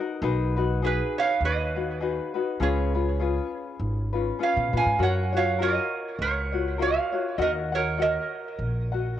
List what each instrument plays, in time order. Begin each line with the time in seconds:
Already playing: ukulele F#4 A#4
0.00 ukulele D#4
0.22 upright bass B1, ukulele D#4 F#4 G#4 B4
0.56 ukulele D#4 F#4 B4
0.82 ukulele D#4 F#4 G#4 B4, resonator guitar played with a steel bar G#4
0.86 resonator guitar played with a steel bar B4
1.18 resonator guitar played with a steel bar C#5 F5
1.40 upright bass D#2
1.45 resonator guitar played with a steel bar B4 D#5
1.75 ukulele D#4 F#4 B4
2.00 ukulele D#4 F#4 G#4 B4
2.34 ukulele D#4 F#4 B4
2.60 upright bass C#2, ukulele C#4 F4 G#4 B4, resonator guitar played with a steel bar G#4 C#5
2.94 ukulele C#4 F4 B4
3.19 ukulele C#4 F4 G#4 B4
3.80 upright bass G#1
4.13 ukulele C#4 F4 B4
4.39 ukulele C#4 F4 G#4 B4
4.43 resonator guitar played with a steel bar C#5 F5
4.57 upright bass B2
4.73 upright bass A#2, ukulele C#4 F4 B4
4.77 resonator guitar played with a steel bar F5 G#5
4.86 upright bass G#2
4.98 upright bass F#2, ukulele F#4 A#4 C#5
5.03 resonator guitar played with a steel bar C#5 F#5
5.33 ukulele F4 F#4 C#5
5.37 resonator guitar played with a steel bar C#5 F5
5.59 ukulele F4 F#4 A#4 C#5, resonator guitar played with a steel bar A#4
5.63 resonator guitar played with a steel bar D#5
6.19 upright bass C#2, resonator guitar played with a steel bar A#4 C#5
6.52 ukulele F4 F#4 C#5
6.78 ukulele F4 F#4 A#4 C#5
6.82 resonator guitar played with a steel bar C#5 F5
7.12 ukulele F4 F#4 C#5
7.38 upright bass D#2, ukulele F#4 A#4 D#5 F#5, resonator guitar played with a steel bar D#5
7.42 resonator guitar played with a steel bar A#4
7.72 ukulele F#4 A#4 F#5, resonator guitar played with a steel bar A#4 C#5
7.98 ukulele F#4 A#4 D#5 F#5
8.02 resonator guitar played with a steel bar A#4 D#5
8.59 upright bass A#1
8.92 ukulele F#4 A#4 F#5